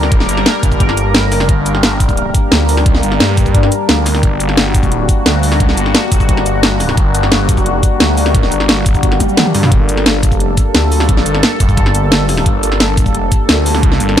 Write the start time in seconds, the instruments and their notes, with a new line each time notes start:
Already playing: detuned saw bass D2, analog synth pad G3 A#3 D4 A#4
0.03 snare
0.12 kick, closed hi-hat
0.20 snare
0.29 detuned saw bass G1, closed hi-hat, cabasa
0.37 snare
0.46 snare, closed hi-hat
0.63 detuned saw bass G1, kick, closed hi-hat, cabasa
0.72 kick, cabasa
0.80 kick, closed hi-hat
0.89 snare
0.97 detuned saw bass G1, closed hi-hat, cabasa
1.15 snare, closed hi-hat
1.32 snare, open hi-hat, cabasa
1.40 snare
1.49 detuned saw bass G1, kick, closed hi-hat
1.66 closed hi-hat, cabasa
1.75 snare
1.83 snare, closed hi-hat
2.00 kick, closed hi-hat, cabasa
2.09 kick, cabasa
2.17 closed hi-hat
2.35 kick, closed hi-hat, cabasa
2.52 detuned saw bass D2, snare, closed hi-hat
2.69 open hi-hat, cabasa
2.77 snare
2.86 kick, closed hi-hat
2.95 snare
3.03 detuned saw bass G1, closed hi-hat, cabasa
3.12 snare
3.20 detuned saw bass G2, snare, closed hi-hat
3.37 kick, closed hi-hat, cabasa
3.46 kick, cabasa
3.55 kick, closed hi-hat
3.63 snare
3.72 closed hi-hat, cabasa
3.89 detuned saw bass D2, snare, closed hi-hat
4.06 snare, open hi-hat, cabasa
4.15 snare
4.23 detuned saw bass G1, analog synth pad F#4, kick, closed hi-hat
4.40 closed hi-hat, cabasa
4.49 snare
4.57 snare, closed hi-hat
4.75 kick, closed hi-hat, cabasa
4.83 kick, cabasa
4.92 closed hi-hat
5.09 kick, closed hi-hat, cabasa
5.26 detuned saw bass D2, snare, closed hi-hat
5.43 open hi-hat, cabasa
5.52 snare
5.60 kick, closed hi-hat
5.69 snare
5.77 detuned saw bass G1, closed hi-hat, cabasa
5.86 snare
5.95 snare, closed hi-hat
6.12 detuned saw bass G1, kick, closed hi-hat, cabasa
6.20 kick, cabasa
6.29 kick, closed hi-hat
6.37 snare
6.46 detuned saw bass G1, closed hi-hat, cabasa
6.63 snare, closed hi-hat
6.80 snare, open hi-hat, cabasa
6.89 snare
6.97 detuned saw bass G1, kick, closed hi-hat
7.15 closed hi-hat, cabasa
7.23 snare
7.32 snare, closed hi-hat
7.49 kick, closed hi-hat, cabasa
7.57 detuned saw bass F#1, kick, cabasa
7.66 closed hi-hat
7.83 kick, closed hi-hat, cabasa
8.00 detuned saw bass D2, snare, closed hi-hat
8.17 open hi-hat, cabasa
8.26 snare
8.35 kick, closed hi-hat
8.43 snare
8.52 detuned saw bass G1, closed hi-hat, cabasa
8.60 snare
8.69 detuned saw bass G1, snare, closed hi-hat
8.86 kick, closed hi-hat, cabasa
8.95 kick, cabasa
9.03 kick, closed hi-hat, swell
9.12 snare
9.20 kick, closed hi-hat, high tom, cabasa
9.29 cabasa
9.37 snare, closed hi-hat, mid tom
9.46 mid tom
9.54 detuned saw bass G2, snare, open hi-hat, cabasa
9.63 snare, mid tom
9.72 detuned saw bass G1, analog synth pad A4, kick, closed hi-hat
9.89 closed hi-hat, cabasa
9.97 snare
10.06 snare, closed hi-hat
10.23 kick, closed hi-hat, cabasa
10.32 detuned saw bass F#1, kick, cabasa
10.40 closed hi-hat
10.57 kick, closed hi-hat, cabasa
10.75 detuned saw bass D2, snare, closed hi-hat
10.92 open hi-hat, cabasa
11.00 snare
11.09 kick, closed hi-hat
11.17 snare
11.26 detuned saw bass G1, closed hi-hat, cabasa
11.35 snare
11.43 snare, closed hi-hat
11.60 detuned saw bass G1, kick, closed hi-hat, cabasa
11.69 kick, cabasa
11.77 kick, closed hi-hat
11.86 snare
11.95 detuned saw bass G1, closed hi-hat, cabasa
12.12 snare, closed hi-hat
12.29 snare, open hi-hat, cabasa
12.37 snare
12.46 detuned saw bass G1, kick, closed hi-hat
12.63 closed hi-hat, cabasa
12.72 snare
12.80 snare, closed hi-hat
12.97 kick, closed hi-hat, cabasa
13.06 detuned saw bass F#1, kick, cabasa
13.15 closed hi-hat
13.32 kick, closed hi-hat, cabasa
13.49 detuned saw bass D2, snare, closed hi-hat
13.66 open hi-hat, cabasa
13.75 snare
13.83 kick, closed hi-hat
13.92 snare
14.00 detuned saw bass G1, closed hi-hat, cabasa
14.09 snare